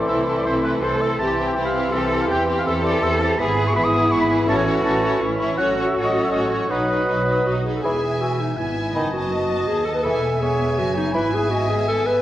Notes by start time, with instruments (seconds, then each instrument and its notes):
Already playing: bassoon E3, clarinet A4, flute C6
0.01 oboe D5
0.07 double bass section C2, french horn section A3 C4, viola section C4, violin section E4 A4, cello section E4, oboe E5
0.26 viola section C4, violin section E4 A4
0.38 oboe D5
0.45 double bass section C2, french horn section A3 C4, viola section C4, violin section E4 A4, oboe C5
0.63 viola section C4, violin section E4 A4, oboe B4
0.82 double bass section C2, french horn section A3 C4, viola section C4, violin section E4 A4, cello section A4, oboe C5
1.01 viola section C4, violin section E4 A4, oboe E5
1.19 double bass section C2, french horn section E3 C4, bassoon E3, viola section C4, violin section E4 G4, clarinet G4, cello section G4, oboe A5, flute C6
1.38 viola section C4, violin section E4 G4
1.47 oboe G5
1.56 double bass section C2, viola section C4, violin section E4 G4, cello section E4
1.65 oboe F5
1.74 viola section C4, violin section E4 G4
1.92 double bass section C2, french horn section E3 C4, viola section C4, violin section E4 G4, cello section A4, oboe E5
2.11 viola section C4, violin section E4 G4
2.21 oboe F5
2.29 double bass section E2, french horn section E3 C4, viola section C4, violin section E4 G4, cello section G4, oboe G5
2.48 viola section C4, violin section E4 G4
2.58 oboe F5
2.65 double bass section E2, french horn section E3 C4, viola section C4, violin section E4 G4, cello section A4, oboe E5
2.84 viola section C4, violin section E4 G4, oboe D5
3.02 double bass section E2, french horn section E3 C4, viola section C4, violin section E4 G4, oboe E5
3.20 viola section C4, violin section E4 G4, oboe A5
3.38 double bass section G#1, french horn section E3 B3, bassoon E3, viola section B3, violin section E4 G#4, clarinet G#4, cello section G#4, flute B5, oboe B5
3.56 viola section B3, violin section E4 G#4
3.67 oboe C#6
3.74 double bass section G#1, french horn section E3 B3, viola section B3, violin section E4 G#4, cello section E4, oboe B5
3.84 oboe D#6
3.92 viola section B3, violin section E4 G#4
4.10 double bass section G#1, viola section B3, violin section E4 G#4, oboe C#6
4.20 oboe B5
4.28 viola section B3, violin section E4 G#4
4.47 double bass section A1, french horn section E3 C#4, viola section C#4, violin section E4 C#5, cello section F#4, clarinet A4, oboe A5, flute C#6
4.58 oboe G#5
4.65 viola section C#4, violin section E4 C#5
4.84 double bass section A1, french horn section E3 C#4, viola section C#4, violin section E4 C#5, oboe A5
5.02 viola section C#4, violin section E4 C#5
5.21 double bass section A1, viola section C#4, violin section E4 C#5, cello section E4
5.39 viola section C#4, violin section E4 C#5
5.57 double bass section A1, french horn section F#3 C#4, bassoon F#3, viola section C#4, violin section F#4 C#5, cello section F#4, clarinet A4, oboe F#5, flute C#6
5.76 viola section C#4, violin section F#4 C#5
5.86 oboe E5
5.95 double bass section A1, viola section C#4, violin section F#4 C#5
6.05 oboe D#5
6.14 viola section C#4, violin section F#4 C#5
6.24 oboe E5
6.31 double bass section A1, viola section C#4, cello section F#4, violin section F#4 C#5, oboe D#5
6.51 viola section C#4, violin section F#4 C#5, oboe C#5
6.70 double bass section B1, french horn section F#3 D#4, bassoon F#3, viola section D#4, cello section D#4, violin section F#4 B4, clarinet B4, oboe B4, flute D#6
6.89 viola section D#4, violin section F#4 B4
7.08 double bass section B1, viola section D#4, violin section F#4 B4
7.28 viola section D#4, violin section F#4 B4
7.46 double bass section B1, viola section D#4, clarinet F#4, violin section F#4 B4
7.65 viola section D#4, violin section F#4 B4, clarinet G#4
7.75 clarinet A4
7.84 double bass section E1, cello section E2, bassoon E3, viola section B3, clarinet G#4, violin section E5 G#5, flute B5
8.20 clarinet F#4, oboe E5
8.40 clarinet D#4
8.57 double bass section G#1, cello section G#2, viola section B3, clarinet E4, violin section E5 G#5, oboe G#5
8.95 double bass section F#1, cello section F#2, bassoon D#3, viola section B3, clarinet D#4, violin section D#5 A5, flute B5
9.13 clarinet F#4
9.32 oboe D#5
9.68 double bass section D#2, cello section D#2, clarinet G#4
9.86 clarinet A4
9.94 clarinet B4
10.03 double bass section E1, cello section E2, bassoon E3, viola section B3, clarinet A4, violin section E5 G#5, oboe E5, flute B5
10.40 viola section B3, clarinet G#4, oboe C#5, violin section E5 G#5
10.78 double bass section F#1, cello section F#2, clarinet F#4
10.97 clarinet D#4
11.13 double bass section G#1, cello section G#2, bassoon E3, viola section B3, clarinet E4, oboe B4, violin section E5 G#5, flute B5
11.34 clarinet G#4
11.51 clarinet F#4, oboe D#5
11.69 clarinet G#4
11.88 clarinet A4, oboe E5
12.06 clarinet B4